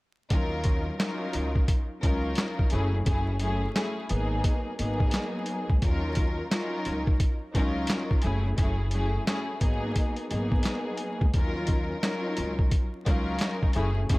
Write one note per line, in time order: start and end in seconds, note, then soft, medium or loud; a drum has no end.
0.30 0.88 D#2 loud
0.30 0.96 F#3 loud
0.30 0.96 C#4 medium
0.30 0.96 D#4 medium
0.30 0.96 F4 medium
0.30 0.96 A#4 loud
0.30 kick loud
0.30 closed hi-hat medium
0.64 kick medium
0.64 closed hi-hat medium
0.99 1.81 F#3 loud
0.99 1.81 C#4 medium
0.99 1.81 D#4 loud
0.99 1.81 F4 medium
0.99 1.81 A#4 loud
0.99 snare loud
0.99 clap loud
0.99 closed hi-hat medium
1.33 1.63 C#2 medium
1.33 closed hi-hat medium
1.55 kick medium
1.68 kick medium
1.68 closed hi-hat loud
2.03 2.32 C#2 medium
2.03 2.71 F#3 medium
2.03 2.71 C#4 medium
2.03 2.72 D#4 medium
2.03 2.72 F4 medium
2.03 2.72 A#4 loud
2.03 kick medium
2.03 closed hi-hat medium
2.35 snare loud
2.35 clap medium
2.35 closed hi-hat loud
2.59 kick loud
2.70 3.01 F#1 loud
2.70 2.96 F#3 loud
2.70 2.96 A3 medium
2.70 2.96 C#4 medium
2.70 2.96 E4 medium
2.70 2.96 G#4 loud
2.70 closed hi-hat medium
3.06 3.64 F#1 loud
3.06 3.39 F#3 medium
3.06 3.39 A3 medium
3.06 3.39 C#4 medium
3.06 3.39 E4 medium
3.06 3.39 G#4 loud
3.06 kick loud
3.06 closed hi-hat medium
3.39 3.73 F#3 medium
3.39 3.73 A3 medium
3.39 3.73 C#4 medium
3.39 3.73 E4 medium
3.39 3.74 G#4 loud
3.39 closed hi-hat medium
3.75 4.09 F#3 medium
3.75 4.10 A3 medium
3.75 4.10 C#4 medium
3.75 4.10 E4 medium
3.75 4.09 G#4 loud
3.75 snare loud
3.75 clap loud
3.75 closed hi-hat medium
4.09 4.39 G#1 loud
4.09 4.75 F#3 medium
4.09 4.75 A#3 medium
4.09 4.75 B3 medium
4.09 4.75 D#4 medium
4.09 4.75 G#4 loud
4.09 closed hi-hat medium
4.44 kick medium
4.44 closed hi-hat loud
4.78 5.08 G#1 medium
4.78 5.76 F#3 loud
4.78 5.76 A#3 medium
4.78 5.76 B3 medium
4.78 5.76 D#4 medium
4.78 5.76 G#4 loud
4.78 closed hi-hat medium
5.00 kick loud
5.11 snare loud
5.11 clap loud
5.11 closed hi-hat loud
5.46 closed hi-hat medium
5.70 5.81 C#2 medium
5.70 kick loud
5.82 6.40 D#2 loud
5.82 6.47 F#3 loud
5.82 6.47 C#4 medium
5.82 6.48 D#4 medium
5.82 6.48 F4 loud
5.82 6.48 A#4 loud
5.82 kick loud
5.82 closed hi-hat medium
6.15 kick medium
6.15 closed hi-hat medium
6.51 7.33 F#3 loud
6.51 7.33 C#4 loud
6.51 7.33 D#4 loud
6.51 7.33 F4 medium
6.51 7.33 A#4 loud
6.51 snare loud
6.51 clap loud
6.51 closed hi-hat medium
6.85 7.15 C#2 medium
6.85 closed hi-hat medium
7.07 kick medium
7.20 kick medium
7.20 closed hi-hat loud
7.55 7.84 C#2 medium
7.55 8.23 F#3 loud
7.55 8.23 C#4 loud
7.55 8.24 D#4 medium
7.55 8.24 F4 medium
7.55 8.24 A#4 loud
7.55 kick medium
7.55 closed hi-hat medium
7.87 snare loud
7.87 clap loud
7.87 closed hi-hat loud
8.11 kick loud
8.22 8.53 F#1 loud
8.22 8.47 F#3 medium
8.22 8.47 A3 medium
8.22 8.48 C#4 medium
8.22 8.48 E4 medium
8.22 8.48 G#4 loud
8.22 closed hi-hat medium
8.58 9.16 F#1 loud
8.58 8.90 F#3 loud
8.58 8.90 A3 medium
8.58 8.91 C#4 medium
8.58 8.91 E4 medium
8.58 8.91 G#4 loud
8.58 kick loud
8.58 closed hi-hat medium
8.91 9.25 F#3 medium
8.91 9.25 A3 medium
8.91 9.25 C#4 medium
8.91 9.25 E4 medium
8.91 9.25 G#4 loud
8.91 closed hi-hat medium
9.27 9.60 F#3 medium
9.27 9.62 A3 medium
9.27 9.62 C#4 medium
9.27 9.62 E4 medium
9.27 9.61 G#4 loud
9.27 snare loud
9.27 clap loud
9.27 closed hi-hat medium
9.61 9.90 G#1 loud
9.61 10.26 F#3 medium
9.61 10.26 A#3 medium
9.61 10.26 B3 medium
9.61 10.26 D#4 medium
9.61 10.27 G#4 loud
9.61 kick medium
9.61 closed hi-hat medium
9.96 kick medium
9.96 closed hi-hat loud
10.16 closed hi-hat soft
10.30 10.60 G#1 medium
10.30 11.27 F#3 medium
10.30 11.28 A#3 medium
10.30 11.28 B3 medium
10.30 11.28 D#4 medium
10.30 11.28 G#4 loud
10.30 closed hi-hat medium
10.52 kick medium
10.63 snare loud
10.63 clap medium
10.63 closed hi-hat medium
10.97 closed hi-hat medium
11.21 11.32 C#2 medium
11.21 kick loud
11.34 11.92 D#2 loud
11.34 11.99 F#3 loud
11.34 11.99 C#4 medium
11.34 11.99 D#4 medium
11.34 11.99 F4 medium
11.34 11.99 A#4 loud
11.34 kick loud
11.34 closed hi-hat medium
11.67 kick medium
11.67 closed hi-hat medium
12.02 12.84 F#3 loud
12.02 12.85 C#4 loud
12.02 12.85 D#4 medium
12.02 12.85 F4 medium
12.02 12.85 A#4 loud
12.02 snare loud
12.02 clap loud
12.02 closed hi-hat medium
12.37 12.67 C#2 medium
12.37 closed hi-hat medium
12.59 kick medium
12.71 kick medium
12.71 closed hi-hat loud
13.06 13.35 C#2 medium
13.06 13.75 F#3 loud
13.06 13.75 C#4 medium
13.06 13.75 D#4 medium
13.06 13.76 F4 medium
13.06 13.76 A#4 loud
13.06 kick medium
13.06 closed hi-hat medium
13.39 snare loud
13.39 clap medium
13.39 closed hi-hat loud
13.63 kick medium
13.73 14.05 F#1 loud
13.73 13.99 F#3 medium
13.73 13.99 A3 medium
13.73 13.99 C#4 medium
13.73 13.99 E4 medium
13.73 13.99 G#4 loud
13.73 closed hi-hat medium
14.09 14.19 F#1 loud
14.09 14.19 F#3 medium
14.09 14.19 A3 medium
14.09 14.19 C#4 medium
14.09 14.19 E4 medium
14.09 14.19 G#4 loud
14.09 kick loud
14.09 closed hi-hat medium